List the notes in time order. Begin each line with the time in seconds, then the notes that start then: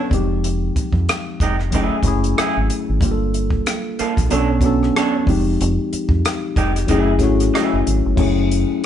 Already playing: F#3 B3 C#4 D4 A4
0.10 F1 F3 G#3 C4 D#4, kick, closed hi-hat
0.14 G4
0.44 closed hi-hat
0.76 muted fingered electric bass stroke, kick, closed hi-hat
0.93 F2, kick
1.09 cross-stick, closed hi-hat
1.40 F1 G#3 D#4 G4, kick, closed hi-hat
1.60 cross-stick
1.71 F#1 F#3 A3 C#4 E4, kick, closed hi-hat
1.76 G#4
1.93 muted fingered electric bass stroke
2.03 F#1 F#3 A3 C#4 E4, kick, cross-stick, closed hi-hat
2.08 G#4
2.24 closed hi-hat
2.38 A3 E4 G#4, cross-stick, closed hi-hat
2.57 G#1
2.70 closed hi-hat
2.89 G#1
3.00 G1 G3 A#3 D4 F4, kick, closed hi-hat
3.05 G4
3.11 A4
3.34 closed hi-hat
3.50 kick
3.66 cross-stick, closed hi-hat
3.99 A#3 F4 A4, muted fingered electric bass stroke, closed hi-hat
4.17 A#1, kick, cross-stick, closed hi-hat
4.29 B1 F#3 B3 C#4 D4 A4 C#5, closed hi-hat
4.33 A4
4.61 F#3 B3 C#4, kick, cross-stick, closed hi-hat
4.65 D4 A4
4.83 cross-stick
4.96 D4 A4 C#5, cross-stick, closed hi-hat
5.26 F1 F3 G#3 C4 D#4, kick, open hi-hat
5.30 G4
5.61 F1, closed hi-hat
5.93 muted fingered electric bass stroke, closed hi-hat
6.09 F2, kick
6.25 cross-stick, closed hi-hat
6.56 F1 G#3 D#4 G4, kick, closed hi-hat
6.76 cross-stick, closed hi-hat
6.87 F#1 F#3 A3 C#4 E4, kick, closed hi-hat
6.91 G#4
7.19 G#1 F#3 A3 C#4 E4, kick, cross-stick, closed hi-hat
7.23 F#4
7.40 cross-stick, closed hi-hat
7.54 A3 E4 G#4, cross-stick, closed hi-hat
7.73 F#1
7.87 G#1, closed hi-hat
8.06 G1
8.16 F#1 F#3 A3 C#4 E4, kick, crash
8.20 G#4
8.51 closed hi-hat